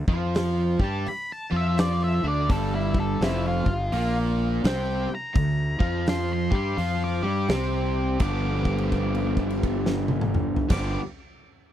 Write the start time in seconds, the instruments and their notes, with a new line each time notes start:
0.07 fingered electric bass F2, overdriven electric guitar F3 F4, kick
0.35 snare, open hi-hat
0.79 fingered electric bass G2, overdriven electric guitar G3 G4, kick
0.84 lead electric guitar A5
1.06 lead electric guitar B5, muted overdriven electric guitar stroke, muted fingered electric bass stroke, open hi-hat
1.32 lead electric guitar A5
1.51 fingered electric bass F2, overdriven electric guitar F3 F4
1.56 lead electric guitar E5
1.78 lead electric guitar D5, snare, open hi-hat
2.04 lead electric guitar E5
2.23 fingered electric bass D2, overdriven electric guitar D3 D4
2.28 lead electric guitar D5
2.50 fingered electric bass G1, overdriven electric guitar G2 G3, lead electric guitar A4, kick, open hi-hat
2.75 lead electric guitar E4
2.94 kick
3.00 lead electric guitar A4
3.21 fingered electric bass F1, overdriven electric guitar F2 F3, lead electric guitar E4, snare, open hi-hat
3.48 lead electric guitar F4
3.66 fingered electric bass G1, overdriven electric guitar G2, kick
3.92 fingered electric bass A#1, overdriven electric guitar A#2 A#3, open hi-hat
4.64 fingered electric bass C2, overdriven electric guitar C3 C4, lead electric guitar G5, snare, open hi-hat
5.09 muted overdriven electric guitar stroke, muted fingered electric bass stroke
5.15 lead electric guitar A#5
5.35 fingered electric bass D2, overdriven electric guitar D3, kick, open hi-hat
5.79 fingered electric bass F2, overdriven electric guitar F3 F4, kick
6.07 lead electric guitar C6, snare, open hi-hat
6.33 lead electric guitar C6
6.51 fingered electric bass G2, overdriven electric guitar G3 G4, kick
6.56 lead electric guitar C6
6.77 fingered electric bass F2, overdriven electric guitar F3 F4, open hi-hat
7.04 lead electric guitar D6
7.22 fingered electric bass G2, overdriven electric guitar G3 G4
7.49 fingered electric bass C2, overdriven electric guitar C3 C4, snare, open hi-hat
8.19 fingered electric bass G1, overdriven electric guitar G2 D3 F3 B3 D4 G4, lead electric guitar D6, kick, crash
8.65 kick, crash
8.78 crash
8.92 kick, crash
9.15 crash
9.37 kick, crash
9.50 crash
9.63 kick, crash
9.86 snare
10.08 high tom
10.21 mid tom
10.34 mid tom
10.56 floor tom
10.69 fingered electric bass G1, overdriven electric guitar G2 D3 F3 B3 D4, lead electric guitar D6, kick, snare, crash
10.73 overdriven electric guitar G4